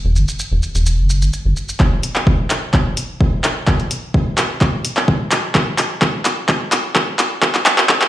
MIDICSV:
0, 0, Header, 1, 3, 480
1, 0, Start_track
1, 0, Key_signature, 1, "minor"
1, 0, Tempo, 468750
1, 1843, Time_signature, 4, 2, 24, 8
1, 8277, End_track
2, 0, Start_track
2, 0, Title_t, "Analog synth bass"
2, 0, Program_c, 0, 38
2, 48, Note_on_c, 0, 28, 99
2, 163, Note_on_c, 0, 31, 95
2, 178, Note_off_c, 0, 28, 0
2, 256, Note_off_c, 0, 31, 0
2, 528, Note_on_c, 0, 28, 99
2, 613, Note_off_c, 0, 28, 0
2, 768, Note_on_c, 0, 28, 86
2, 1008, Note_on_c, 0, 30, 78
2, 1024, Note_off_c, 0, 28, 0
2, 1248, Note_on_c, 0, 31, 93
2, 1264, Note_off_c, 0, 30, 0
2, 1333, Note_off_c, 0, 31, 0
2, 1489, Note_on_c, 0, 31, 80
2, 1573, Note_off_c, 0, 31, 0
2, 8277, End_track
3, 0, Start_track
3, 0, Title_t, "Drums"
3, 163, Note_on_c, 9, 82, 30
3, 265, Note_off_c, 9, 82, 0
3, 288, Note_on_c, 9, 82, 42
3, 391, Note_off_c, 9, 82, 0
3, 403, Note_on_c, 9, 82, 50
3, 505, Note_off_c, 9, 82, 0
3, 643, Note_on_c, 9, 82, 30
3, 745, Note_off_c, 9, 82, 0
3, 768, Note_on_c, 9, 82, 42
3, 871, Note_off_c, 9, 82, 0
3, 883, Note_on_c, 9, 82, 53
3, 985, Note_off_c, 9, 82, 0
3, 1123, Note_on_c, 9, 82, 52
3, 1225, Note_off_c, 9, 82, 0
3, 1248, Note_on_c, 9, 82, 41
3, 1351, Note_off_c, 9, 82, 0
3, 1363, Note_on_c, 9, 82, 53
3, 1465, Note_off_c, 9, 82, 0
3, 1602, Note_on_c, 9, 82, 29
3, 1705, Note_off_c, 9, 82, 0
3, 1728, Note_on_c, 9, 82, 44
3, 1830, Note_off_c, 9, 82, 0
3, 1842, Note_on_c, 9, 36, 113
3, 1842, Note_on_c, 9, 39, 45
3, 1945, Note_off_c, 9, 36, 0
3, 1945, Note_off_c, 9, 39, 0
3, 2082, Note_on_c, 9, 46, 89
3, 2185, Note_off_c, 9, 46, 0
3, 2208, Note_on_c, 9, 39, 42
3, 2310, Note_off_c, 9, 39, 0
3, 2322, Note_on_c, 9, 36, 115
3, 2425, Note_off_c, 9, 36, 0
3, 2562, Note_on_c, 9, 39, 48
3, 2562, Note_on_c, 9, 46, 90
3, 2665, Note_off_c, 9, 39, 0
3, 2665, Note_off_c, 9, 46, 0
3, 2802, Note_on_c, 9, 36, 112
3, 2803, Note_on_c, 9, 39, 50
3, 2905, Note_off_c, 9, 36, 0
3, 2905, Note_off_c, 9, 39, 0
3, 3042, Note_on_c, 9, 46, 95
3, 3145, Note_off_c, 9, 46, 0
3, 3282, Note_on_c, 9, 36, 116
3, 3385, Note_off_c, 9, 36, 0
3, 3522, Note_on_c, 9, 39, 55
3, 3522, Note_on_c, 9, 46, 88
3, 3625, Note_off_c, 9, 39, 0
3, 3625, Note_off_c, 9, 46, 0
3, 3762, Note_on_c, 9, 39, 58
3, 3763, Note_on_c, 9, 36, 122
3, 3865, Note_off_c, 9, 36, 0
3, 3865, Note_off_c, 9, 39, 0
3, 3888, Note_on_c, 9, 46, 37
3, 3990, Note_off_c, 9, 46, 0
3, 4002, Note_on_c, 9, 46, 94
3, 4105, Note_off_c, 9, 46, 0
3, 4243, Note_on_c, 9, 36, 118
3, 4345, Note_off_c, 9, 36, 0
3, 4482, Note_on_c, 9, 39, 64
3, 4482, Note_on_c, 9, 46, 94
3, 4585, Note_off_c, 9, 39, 0
3, 4585, Note_off_c, 9, 46, 0
3, 4722, Note_on_c, 9, 36, 125
3, 4722, Note_on_c, 9, 39, 66
3, 4825, Note_off_c, 9, 36, 0
3, 4825, Note_off_c, 9, 39, 0
3, 4962, Note_on_c, 9, 46, 97
3, 5064, Note_off_c, 9, 46, 0
3, 5088, Note_on_c, 9, 39, 59
3, 5190, Note_off_c, 9, 39, 0
3, 5202, Note_on_c, 9, 36, 121
3, 5305, Note_off_c, 9, 36, 0
3, 5442, Note_on_c, 9, 39, 69
3, 5442, Note_on_c, 9, 46, 93
3, 5545, Note_off_c, 9, 39, 0
3, 5545, Note_off_c, 9, 46, 0
3, 5682, Note_on_c, 9, 36, 123
3, 5683, Note_on_c, 9, 39, 73
3, 5785, Note_off_c, 9, 36, 0
3, 5785, Note_off_c, 9, 39, 0
3, 5922, Note_on_c, 9, 39, 74
3, 5922, Note_on_c, 9, 46, 94
3, 6025, Note_off_c, 9, 39, 0
3, 6025, Note_off_c, 9, 46, 0
3, 6162, Note_on_c, 9, 36, 125
3, 6162, Note_on_c, 9, 39, 78
3, 6265, Note_off_c, 9, 36, 0
3, 6265, Note_off_c, 9, 39, 0
3, 6403, Note_on_c, 9, 39, 81
3, 6403, Note_on_c, 9, 46, 94
3, 6505, Note_off_c, 9, 39, 0
3, 6505, Note_off_c, 9, 46, 0
3, 6642, Note_on_c, 9, 36, 125
3, 6643, Note_on_c, 9, 39, 83
3, 6745, Note_off_c, 9, 36, 0
3, 6745, Note_off_c, 9, 39, 0
3, 6883, Note_on_c, 9, 39, 88
3, 6883, Note_on_c, 9, 46, 102
3, 6985, Note_off_c, 9, 39, 0
3, 6985, Note_off_c, 9, 46, 0
3, 7122, Note_on_c, 9, 39, 89
3, 7123, Note_on_c, 9, 36, 127
3, 7225, Note_off_c, 9, 36, 0
3, 7225, Note_off_c, 9, 39, 0
3, 7363, Note_on_c, 9, 39, 89
3, 7363, Note_on_c, 9, 46, 98
3, 7465, Note_off_c, 9, 39, 0
3, 7465, Note_off_c, 9, 46, 0
3, 7602, Note_on_c, 9, 36, 123
3, 7603, Note_on_c, 9, 39, 90
3, 7705, Note_off_c, 9, 36, 0
3, 7705, Note_off_c, 9, 39, 0
3, 7728, Note_on_c, 9, 39, 82
3, 7728, Note_on_c, 9, 46, 39
3, 7831, Note_off_c, 9, 39, 0
3, 7831, Note_off_c, 9, 46, 0
3, 7843, Note_on_c, 9, 39, 97
3, 7843, Note_on_c, 9, 46, 94
3, 7945, Note_off_c, 9, 39, 0
3, 7945, Note_off_c, 9, 46, 0
3, 7968, Note_on_c, 9, 39, 87
3, 8071, Note_off_c, 9, 39, 0
3, 8082, Note_on_c, 9, 36, 127
3, 8082, Note_on_c, 9, 39, 95
3, 8185, Note_off_c, 9, 36, 0
3, 8185, Note_off_c, 9, 39, 0
3, 8208, Note_on_c, 9, 39, 88
3, 8277, Note_off_c, 9, 39, 0
3, 8277, End_track
0, 0, End_of_file